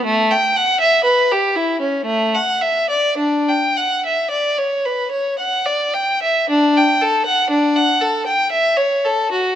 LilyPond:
\new Staff \with { instrumentName = "Violin" } { \time 3/4 \key d \major \tempo 4 = 57 a16 g''16 fis''16 e''16 b'16 g'16 e'16 cis'16 a16 fis''16 e''16 d''16 | d'16 g''16 fis''16 e''16 d''16 cis''16 b'16 cis''16 fis''16 d''16 g''16 e''16 | d'16 g''16 a'16 fis''16 d'16 fis''16 a'16 g''16 e''16 cis''16 a'16 fis'16 | }